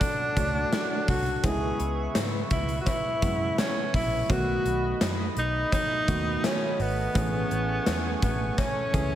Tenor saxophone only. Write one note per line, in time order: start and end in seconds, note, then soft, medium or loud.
0.00 1.09 D4 medium
1.09 1.46 F#4 medium
1.45 2.16 G#4 medium
2.52 2.78 E4 medium
2.81 2.89 F#4 medium
2.87 3.58 E4 medium
3.59 3.92 C#4 medium
3.95 4.32 E4 medium
4.31 5.02 F#4 medium
5.39 5.71 D#4 loud
5.74 6.41 D#4 loud
6.46 6.82 C#4 loud
6.81 8.23 B3 loud
8.23 8.61 B3 medium
8.59 9.15 C#4 loud